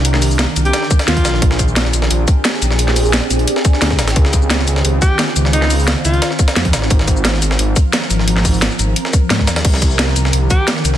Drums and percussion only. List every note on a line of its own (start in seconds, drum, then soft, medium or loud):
0.05 closed hi-hat loud
0.05 closed hi-hat medium
0.14 snare medium
0.14 snare soft
0.22 closed hi-hat medium
0.22 open hi-hat medium
0.22 shaker medium
0.31 shaker soft
0.39 snare loud
0.39 closed hi-hat medium
0.39 closed hi-hat loud
0.56 closed hi-hat medium
0.56 shaker medium
0.65 closed hi-hat soft
0.73 snare loud
0.73 closed hi-hat medium
0.73 closed hi-hat loud
0.82 snare soft
0.91 kick loud
0.91 closed hi-hat medium
0.91 shaker medium
0.99 snare loud
0.99 closed hi-hat medium
1.08 snare loud
1.08 snare soft
1.08 closed hi-hat loud
1.17 kick medium
1.17 closed hi-hat medium
1.25 snare loud
1.25 closed hi-hat medium
1.25 shaker medium
1.34 snare soft
1.42 kick loud
1.42 closed hi-hat medium
1.42 closed hi-hat loud
1.51 snare medium
1.59 kick medium
1.59 closed hi-hat medium
1.59 shaker medium
1.68 shaker soft
1.76 snare loud
1.76 closed hi-hat medium
1.76 closed hi-hat loud
1.85 snare soft
1.93 closed hi-hat medium
1.93 shaker medium
2.02 snare medium
2.10 closed hi-hat medium
2.10 closed hi-hat loud
2.28 kick loud
2.28 closed hi-hat medium
2.28 shaker medium
2.45 snare loud
2.45 closed hi-hat medium
2.54 snare soft
2.62 closed hi-hat medium
2.62 shaker medium
2.71 snare soft
2.79 closed hi-hat medium
2.88 snare soft
2.96 closed hi-hat medium
2.96 open hi-hat medium
2.96 shaker medium
3.05 shaker soft
3.13 snare loud
3.13 closed hi-hat medium
3.30 closed hi-hat medium
3.30 shaker medium
3.39 closed hi-hat soft
3.47 closed hi-hat medium
3.56 snare medium
3.65 kick loud
3.65 closed hi-hat medium
3.65 shaker medium
3.73 snare soft
3.82 snare loud
3.82 closed hi-hat medium
3.90 kick medium
3.90 snare medium
3.99 snare loud
3.99 closed hi-hat medium
3.99 shaker medium
4.08 snare loud
4.08 closed hi-hat medium
4.16 kick loud
4.16 closed hi-hat medium
4.25 snare medium
4.33 kick medium
4.33 closed hi-hat medium
4.33 shaker medium
4.42 shaker soft
4.50 snare loud
4.50 closed hi-hat medium
4.59 snare soft
4.67 closed hi-hat medium
4.67 shaker medium
4.76 snare medium
4.85 closed hi-hat medium
5.02 kick loud
5.02 closed hi-hat medium
5.02 shaker medium
5.19 snare loud
5.19 closed hi-hat medium
5.28 snare soft
5.36 closed hi-hat medium
5.36 shaker medium
5.45 snare soft
5.53 closed hi-hat medium
5.62 snare soft
5.70 closed hi-hat medium
5.70 open hi-hat medium
5.70 shaker medium
5.79 shaker soft
5.88 snare loud
5.88 closed hi-hat medium
6.05 closed hi-hat medium
6.05 shaker medium
6.14 closed hi-hat soft
6.22 snare loud
6.22 closed hi-hat medium
6.31 snare soft
6.39 kick loud
6.39 closed hi-hat medium
6.39 shaker medium
6.48 snare loud
6.48 closed hi-hat medium
6.56 snare soft
6.56 snare loud
6.56 closed hi-hat medium
6.65 kick medium
6.65 closed hi-hat medium
6.73 snare loud
6.73 closed hi-hat medium
6.73 shaker medium
6.82 snare soft
6.90 kick loud
6.90 closed hi-hat medium
6.99 snare medium
7.07 kick medium
7.07 closed hi-hat medium
7.07 shaker medium
7.17 shaker soft
7.25 snare loud
7.25 closed hi-hat medium
7.34 snare soft
7.42 closed hi-hat medium
7.42 shaker medium
7.51 snare medium
7.59 closed hi-hat medium
7.76 kick loud
7.76 closed hi-hat medium
7.76 shaker medium
7.93 snare loud
7.93 closed hi-hat medium
8.02 snare soft
8.10 closed hi-hat medium
8.10 shaker medium
8.19 snare soft
8.28 closed hi-hat medium
8.28 closed hi-hat loud
8.36 snare soft
8.45 kick medium
8.45 closed hi-hat medium
8.45 open hi-hat medium
8.45 shaker medium
8.54 shaker soft
8.62 snare loud
8.62 closed hi-hat medium
8.62 closed hi-hat loud
8.71 shaker soft
8.79 closed hi-hat medium
8.79 shaker medium
8.96 closed hi-hat medium
8.96 closed hi-hat loud
9.05 snare medium
9.13 kick loud
9.13 closed hi-hat medium
9.13 shaker medium
9.30 snare loud
9.30 closed hi-hat medium
9.30 closed hi-hat loud
9.39 kick medium
9.39 snare soft
9.47 snare loud
9.47 closed hi-hat medium
9.47 shaker medium
9.56 snare loud
9.56 closed hi-hat medium
9.65 kick loud
9.65 closed hi-hat loud
9.65 closed hi-hat medium
9.65 crash medium
9.74 snare medium
9.82 kick medium
9.82 closed hi-hat medium
9.82 shaker medium
9.91 shaker soft
9.99 snare loud
9.99 closed hi-hat medium
9.99 closed hi-hat loud
10.08 snare soft
10.16 closed hi-hat medium
10.16 shaker medium
10.25 snare medium
10.33 closed hi-hat loud
10.33 closed hi-hat medium
10.50 kick loud
10.50 closed hi-hat medium
10.50 shaker medium
10.68 snare loud
10.68 closed hi-hat medium
10.68 closed hi-hat loud
10.77 snare soft
10.85 closed hi-hat medium
10.85 shaker medium
10.94 snare soft